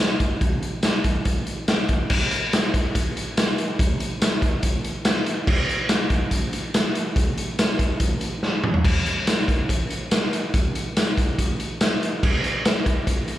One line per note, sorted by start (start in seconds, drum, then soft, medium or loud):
0.20 kick medium
0.20 closed hi-hat medium
0.41 kick loud
0.41 closed hi-hat medium
0.63 closed hi-hat medium
0.83 snare loud
0.83 closed hi-hat medium
0.83 tambourine loud
1.04 kick medium
1.04 closed hi-hat medium
1.25 kick medium
1.25 closed hi-hat medium
1.47 closed hi-hat medium
1.68 snare loud
1.68 closed hi-hat medium
1.68 tambourine loud
1.89 kick medium
1.89 closed hi-hat medium
2.10 kick loud
2.10 crash loud
2.31 closed hi-hat medium
2.53 snare loud
2.53 closed hi-hat loud
2.53 tambourine loud
2.74 kick medium
2.74 closed hi-hat medium
2.95 kick medium
2.95 closed hi-hat loud
3.17 closed hi-hat medium
3.37 snare loud
3.37 closed hi-hat loud
3.37 tambourine loud
3.58 closed hi-hat medium
3.79 kick loud
3.79 closed hi-hat loud
4.00 closed hi-hat medium
4.22 snare loud
4.22 closed hi-hat loud
4.22 tambourine loud
4.42 kick medium
4.42 closed hi-hat medium
4.63 kick medium
4.63 closed hi-hat loud
4.84 closed hi-hat medium
5.05 snare loud
5.05 closed hi-hat loud
5.05 tambourine loud
5.16 snare soft
5.26 closed hi-hat medium
5.47 kick loud
5.47 crash loud
5.69 closed hi-hat medium
5.89 snare loud
5.89 closed hi-hat loud
5.89 tambourine loud
6.10 kick medium
6.10 closed hi-hat medium
6.31 kick medium
6.31 closed hi-hat loud
6.53 closed hi-hat medium
6.74 snare loud
6.74 closed hi-hat loud
6.74 tambourine loud
6.95 closed hi-hat medium
7.16 kick loud
7.16 closed hi-hat loud
7.38 closed hi-hat medium
7.59 snare loud
7.59 closed hi-hat loud
7.59 tambourine loud
7.79 kick medium
7.79 closed hi-hat medium
8.00 kick medium
8.00 closed hi-hat loud
8.21 closed hi-hat medium
8.43 snare medium
8.64 mid tom loud
8.74 floor tom medium
8.85 kick loud
8.85 crash loud
9.06 closed hi-hat medium
9.27 snare loud
9.27 closed hi-hat medium
9.27 tambourine loud
9.48 kick medium
9.48 closed hi-hat medium
9.69 kick medium
9.69 closed hi-hat loud
9.90 closed hi-hat medium
10.11 snare loud
10.11 closed hi-hat loud
10.11 tambourine loud
10.23 snare soft
10.33 closed hi-hat medium
10.54 kick loud
10.54 closed hi-hat loud
10.75 closed hi-hat medium
10.97 snare loud
10.97 closed hi-hat loud
10.97 tambourine loud
11.18 kick medium
11.18 closed hi-hat medium
11.39 kick medium
11.39 closed hi-hat loud
11.60 closed hi-hat medium
11.81 snare loud
11.81 closed hi-hat loud
11.81 tambourine loud
11.93 snare soft
12.03 closed hi-hat medium
12.23 kick loud
12.23 crash loud
12.44 closed hi-hat medium
12.65 snare loud
12.65 closed hi-hat medium
12.65 tambourine loud
12.86 kick medium
12.86 closed hi-hat medium
13.07 kick medium
13.07 closed hi-hat medium
13.28 closed hi-hat medium